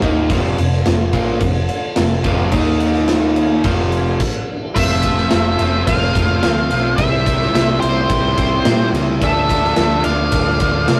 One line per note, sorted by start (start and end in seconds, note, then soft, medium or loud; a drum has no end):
0.00 0.28 D#2 medium
0.00 0.29 D#3 medium
0.00 0.30 A#3 medium
0.00 2.51 C4 medium
0.00 0.30 D#4 loud
0.00 2.50 F4 medium
0.00 2.50 A4 medium
0.00 2.50 C5 medium
0.00 kick loud
0.00 crash medium
0.30 0.56 F1 medium
0.30 0.57 F2 medium
0.30 0.58 C3 loud
0.30 0.58 F3 loud
0.30 kick loud
0.30 crash medium
0.58 0.84 F1 medium
0.58 0.81 F2 medium
0.58 0.81 C3 medium
0.58 crash medium
0.72 snare soft
0.86 1.12 F1 medium
0.86 1.09 F2 medium
0.86 1.09 C3 medium
0.86 snare loud
0.86 crash medium
1.13 1.40 A#1 loud
1.13 1.41 A#2 loud
1.13 1.41 F3 loud
1.13 1.41 A#3 loud
1.13 kick loud
1.13 crash medium
1.40 1.67 F1 medium
1.40 1.64 F2 medium
1.40 1.65 C3 medium
1.40 kick medium
1.40 crash medium
1.69 crash medium
1.96 2.23 F1 medium
1.96 2.20 F2 medium
1.96 2.20 C3 medium
1.96 snare loud
1.96 crash medium
2.24 2.51 F1 medium
2.24 2.53 F2 medium
2.24 2.52 C3 loud
2.24 2.52 F3 medium
2.24 kick loud
2.24 crash medium
2.52 3.60 D#2 loud
2.52 3.64 D#3 medium
2.52 3.63 A#3 medium
2.52 3.64 A#3 loud
2.52 3.64 D#4 medium
2.52 3.64 D#4 loud
2.52 3.63 A#4 medium
2.52 3.63 D#5 medium
2.52 kick loud
2.52 crash medium
2.80 crash medium
2.94 snare soft
3.08 snare loud
3.08 crash medium
3.36 crash medium
3.64 4.16 F1 loud
3.64 4.19 F2 medium
3.64 4.20 C3 medium
3.64 4.20 F3 loud
3.64 4.20 C4 medium
3.64 4.20 F4 medium
3.64 4.20 A4 medium
3.64 4.20 C5 medium
3.64 kick loud
3.64 crash medium
3.92 crash medium
4.20 kick loud
4.20 crash loud
4.45 4.67 B3 medium
4.45 4.68 C4 medium
4.45 4.69 D4 medium
4.52 4.71 E4 medium
4.52 4.72 F4 medium
4.59 4.74 G4 medium
4.59 4.74 A4 medium
4.64 4.77 B4 medium
4.64 4.73 C5 medium
4.70 4.80 D5 medium
4.70 4.81 E5 medium
4.74 5.25 F1 loud
4.74 5.58 F2 medium
4.74 5.58 C3 loud
4.74 5.02 F3 medium
4.74 5.03 A3 loud
4.74 6.95 C4 medium
4.74 5.04 C4 loud
4.74 6.96 F4 medium
4.74 5.04 F4 loud
4.74 6.96 A4 medium
4.74 6.96 C5 medium
4.74 5.84 C5 medium
4.74 5.83 E5 loud
4.74 kick loud
4.74 crash loud
5.02 5.30 F3 medium
5.02 5.31 A3 loud
5.02 5.32 C4 loud
5.02 5.31 F4 loud
5.02 kick medium
5.02 ride medium
5.18 snare soft
5.31 5.56 F1 loud
5.31 5.59 F3 medium
5.31 5.59 A3 loud
5.31 5.60 C4 loud
5.31 5.60 F4 loud
5.31 snare loud
5.31 ride loud
5.59 5.84 F1 loud
5.59 6.98 F2 medium
5.59 6.97 C3 medium
5.59 5.86 F3 medium
5.59 5.86 A3 medium
5.59 5.86 C4 loud
5.59 5.87 F4 loud
5.59 ride medium
5.87 6.12 F1 loud
5.87 6.14 F3 medium
5.87 6.14 A3 medium
5.87 6.15 C4 medium
5.87 6.15 F4 medium
5.87 6.95 C5 loud
5.87 6.96 F5 loud
5.87 kick loud
5.87 ride loud
6.15 6.40 F1 medium
6.15 6.42 F3 loud
6.15 6.43 A3 loud
6.15 6.43 C4 loud
6.15 6.43 F4 loud
6.15 kick loud
6.15 ride medium
6.43 6.68 D2 medium
6.43 6.70 F3 loud
6.43 6.70 A3 loud
6.43 6.70 C4 loud
6.43 6.71 F4 medium
6.43 snare loud
6.43 ride loud
6.71 6.96 B1 medium
6.71 6.97 F3 medium
6.71 6.98 A3 loud
6.71 6.97 C4 loud
6.71 6.98 F4 medium
6.71 ride medium
6.96 7.48 C2 loud
6.96 7.25 C3 medium
6.96 7.25 G3 medium
6.96 9.18 C4 medium
6.96 7.25 C4 loud
6.96 9.18 E4 medium
6.96 7.26 E4 loud
6.96 9.19 G4 medium
6.96 9.18 C5 medium
6.96 7.78 C5 medium
6.96 7.77 E5 loud
6.96 kick loud
6.96 ride loud
7.26 7.53 C3 medium
7.26 7.53 G3 medium
7.26 7.53 C4 medium
7.26 7.54 E4 loud
7.26 kick loud
7.26 ride medium
7.41 snare soft
7.54 7.79 C2 loud
7.54 7.82 C3 loud
7.54 7.83 G3 loud
7.54 7.83 C4 loud
7.54 7.83 E4 loud
7.54 snare loud
7.54 ride loud
7.81 8.07 C2 loud
7.81 8.09 C3 loud
7.81 8.09 G3 medium
7.81 8.10 C4 loud
7.81 8.10 E4 loud
7.81 8.90 G4 medium
7.81 8.89 C5 medium
7.81 ride medium
8.09 8.34 C2 loud
8.09 8.37 C3 medium
8.09 8.37 G3 medium
8.09 8.37 C4 loud
8.09 8.38 E4 medium
8.09 kick loud
8.09 ride loud
8.37 8.62 C2 medium
8.37 8.66 C3 loud
8.37 8.66 G3 loud
8.37 8.67 C4 loud
8.37 8.67 E4 loud
8.37 kick loud
8.37 ride medium
8.65 8.90 A#2 loud
8.65 8.93 C3 medium
8.65 8.94 G3 loud
8.65 8.94 C4 loud
8.65 8.94 E4 loud
8.65 snare loud
8.65 ride loud
8.93 9.18 C#2 medium
8.93 9.20 C3 medium
8.93 9.20 G3 loud
8.93 9.21 C4 medium
8.93 9.21 E4 medium
8.93 ride medium
9.19 9.71 D2 loud
9.19 9.50 D3 loud
9.19 9.50 F3 medium
9.19 11.00 D4 medium
9.19 11.00 F4 medium
9.19 11.00 A4 medium
9.19 11.00 D5 medium
9.19 kick loud
9.19 ride loud
9.23 9.50 A3 medium
9.23 9.51 D4 loud
9.23 10.02 A4 medium
9.23 10.02 E5 loud
9.49 9.76 D3 medium
9.49 9.77 F3 medium
9.49 9.77 A3 loud
9.49 9.78 D4 loud
9.49 kick medium
9.49 ride medium
9.64 snare soft
9.76 10.02 D2 loud
9.76 10.04 D3 loud
9.76 10.04 F3 loud
9.76 10.05 A3 loud
9.76 10.06 D4 loud
9.76 snare loud
9.76 ride medium
10.04 10.29 D2 loud
10.04 10.31 D3 medium
10.04 10.32 F3 medium
10.04 10.32 A3 loud
10.04 10.32 D4 loud
10.04 11.00 D5 loud
10.04 11.00 F5 loud
10.04 ride medium
10.32 10.57 D2 loud
10.32 10.60 D3 medium
10.32 10.60 F3 medium
10.32 10.61 A3 medium
10.32 10.61 D4 medium
10.32 kick loud
10.32 ride loud
10.60 10.85 D2 loud
10.60 10.86 D3 loud
10.60 10.87 F3 loud
10.60 10.88 A3 loud
10.60 10.88 D4 loud
10.60 kick loud
10.60 ride medium
10.88 11.00 C3 medium
10.88 11.00 D3 medium
10.88 11.00 F3 medium
10.88 11.00 A3 medium
10.88 11.00 D4 medium
10.88 snare loud
10.88 ride loud